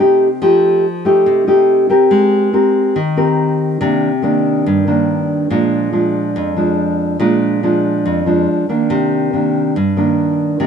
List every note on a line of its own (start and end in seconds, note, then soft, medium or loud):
0.00 0.39 C3 medium
0.00 0.26 A3 medium
0.00 0.27 D#4 medium
0.00 0.27 G4 medium
0.42 1.24 F3 medium
0.42 0.84 A3 medium
0.42 0.84 D#4 medium
0.42 0.84 G4 medium
1.05 1.44 A3 medium
1.05 1.44 D#4 medium
1.05 1.45 G4 medium
1.26 2.09 C3 medium
1.47 1.86 A3 medium
1.47 1.87 D#4 medium
1.47 1.87 G4 medium
1.89 2.52 C4 medium
1.89 2.52 G4 medium
1.89 2.53 A#4 medium
2.11 2.94 G#3 medium
2.53 2.96 C4 medium
2.53 2.96 G4 medium
2.53 2.96 A#4 medium
2.96 3.79 D#3 medium
3.17 3.77 C4 medium
3.17 3.78 G4 medium
3.17 3.78 A#4 medium
3.81 4.64 C3 medium
3.81 4.08 D#3 medium
3.81 4.08 A#3 medium
3.81 4.09 D4 medium
4.22 4.83 D#3 medium
4.22 4.84 A#3 medium
4.22 4.84 D4 medium
4.66 5.49 G2 medium
4.87 5.47 D#3 medium
4.87 5.48 A#3 medium
4.87 5.48 D4 medium
5.50 6.34 A#2 medium
5.50 5.90 F3 medium
5.50 5.90 G#3 medium
5.50 5.90 D4 medium
5.92 6.53 F3 medium
5.92 6.53 G#3 soft
5.92 6.54 D4 medium
6.36 7.19 F2 medium
6.57 7.17 F3 medium
6.57 7.17 G#3 medium
6.57 7.17 D4 medium
7.20 8.03 A#2 medium
7.20 7.59 F3 medium
7.20 7.59 G#3 medium
7.20 7.60 D4 medium
7.63 8.23 F3 medium
7.63 8.24 G#3 medium
7.63 8.24 D4 medium
8.06 8.46 F2 medium
8.26 8.66 F3 medium
8.26 8.66 G#3 medium
8.26 8.66 D4 medium
8.69 9.29 D#3 medium
8.69 9.30 A#3 medium
8.69 9.30 D4 medium
8.90 9.73 C3 medium
9.33 9.75 D#3 medium
9.33 9.75 A#3 medium
9.33 9.76 D4 medium
9.76 10.59 G2 medium
9.97 10.57 D#3 medium
9.97 10.57 A#3 medium
9.97 10.57 D4 medium
10.60 10.67 C3 medium
10.60 10.67 D#3 medium
10.60 10.67 A#3 medium
10.60 10.67 D4 medium